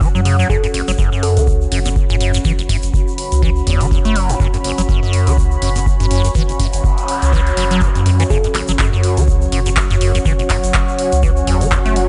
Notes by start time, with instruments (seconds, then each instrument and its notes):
Already playing: ambient pad C#4 F#4 C#5 F#5
0.01 acid bass F#3, kick, shaker
0.15 sub bass F#2, acid bass F#3, shaker
0.25 acid bass C#3, open hi-hat
0.39 acid bass F#3, shaker
0.50 sub bass F#1, acid bass F#2, synth pluck A4, kick, shaker
0.64 acid bass F#2, closed hi-hat, shaker
0.74 acid bass F#1, open hi-hat
0.88 sub bass F#1, acid bass F#3, closed hi-hat, shaker
0.98 acid bass F#2, kick, shaker
1.12 acid bass F#2, shaker
1.23 synth pluck A4, open hi-hat
1.37 sub bass C#2, acid bass E3, ambient pad B5, closed hi-hat, shaker
1.47 kick, shaker
1.61 shaker
1.72 sub bass F#1, acid bass F#2, open hi-hat
1.85 acid bass E2, closed hi-hat, shaker
1.96 kick, shaker
2.10 sub bass F#1, acid bass F#2, closed hi-hat, shaker
2.21 acid bass F#2, open hi-hat
2.34 acid bass F#2, closed hi-hat, shaker
2.44 sub bass F#1, acid bass E3, kick, shaker
2.59 acid bass F#1, closed hi-hat, shaker
2.69 acid bass F#2, kick, open hi-hat
2.82 sub bass F#1, closed hi-hat, shaker
2.94 kick, shaker
3.08 shaker
3.18 open hi-hat
3.32 sub bass C#2, closed hi-hat, shaker
3.42 acid bass E3, kick, shaker
3.56 shaker
3.67 sub bass F#1, acid bass E2, open hi-hat
3.81 acid bass E3, closed hi-hat, shaker
3.91 acid bass E2, kick, shaker
4.05 sub bass F#1, acid bass A3, closed hi-hat, shaker
4.16 acid bass F#3, open hi-hat
4.29 acid bass F#2, closed hi-hat, shaker
4.40 sub bass F#1, acid bass F#2, kick, shaker
4.54 acid bass F#2, closed hi-hat, shaker
4.64 acid bass F#1, open hi-hat
4.78 sub bass F#1, acid bass F#3, closed hi-hat, shaker
4.89 acid bass F#2, kick, shaker
5.03 acid bass F#2, shaker
5.13 open hi-hat
5.27 sub bass C#2, acid bass E3, closed hi-hat, shaker
5.38 kick, shaker
5.51 shaker
5.62 sub bass F#1, acid bass F#2, open hi-hat
5.76 acid bass E2, closed hi-hat, shaker
5.86 kick, shaker
6.00 sub bass F#1, acid bass F#2, closed hi-hat, shaker
6.11 acid bass F#2, open hi-hat
6.24 acid bass F#2, closed hi-hat, shaker
6.35 sub bass F#1, acid bass E3, kick, noise sweep, shaker
6.49 acid bass F#1, closed hi-hat, shaker
6.60 acid bass F#2, kick, open hi-hat
6.73 sub bass F#1, closed hi-hat, shaker
6.84 kick
6.98 closed hi-hat, shaker
7.08 open hi-hat
7.22 sub bass C#2, closed hi-hat, shaker
7.33 acid bass E3, kick, shaker
7.47 closed hi-hat, shaker
7.57 sub bass F#1, acid bass F#3, open hi-hat
7.71 acid bass F#3, closed hi-hat, shaker
7.81 acid bass F#2, kick, shaker
7.95 acid bass F#1, sub bass F#2, closed hi-hat, shaker
8.06 acid bass F#2, open hi-hat
8.20 acid bass E3, closed hi-hat, shaker
8.30 sub bass F#1, acid bass F#2, analog synth pad F#3 F#4 C#5, synth pluck A4, kick, shaker
8.44 acid bass F#2, closed hi-hat, shaker
8.55 acid bass F#1, clap, open hi-hat
8.68 sub bass F#1, acid bass F#3, closed hi-hat, shaker
8.79 acid bass F#2, kick, clap, shaker
8.93 acid bass F#2, shaker
9.03 open hi-hat
9.17 sub bass C#2, acid bass E3, ambient pad F#5, closed hi-hat, shaker
9.28 kick, shaker
9.41 shaker
9.52 sub bass F#1, acid bass F#2, open hi-hat
9.66 acid bass E2, closed hi-hat, shaker
9.77 kick, clap, shaker
9.90 sub bass F#1, acid bass F#2, closed hi-hat, shaker
10.01 acid bass F#2, open hi-hat
10.15 acid bass F#2, closed hi-hat, shaker
10.25 sub bass F#1, acid bass E3, kick, shaker
10.39 acid bass F#1, closed hi-hat, shaker
10.50 acid bass F#2, kick, clap, open hi-hat
10.64 sub bass F#1, closed hi-hat, shaker
10.74 kick, clap, shaker
10.88 shaker
10.99 open hi-hat
11.12 sub bass C#2, closed hi-hat, shaker
11.23 acid bass E3, kick, shaker
11.37 shaker
11.47 sub bass F#1, acid bass E2, open hi-hat
11.61 acid bass E3, closed hi-hat, shaker
11.72 acid bass E2, kick, clap, shaker
11.86 sub bass F#1, acid bass A3, closed hi-hat, shaker
11.96 acid bass F#3, open hi-hat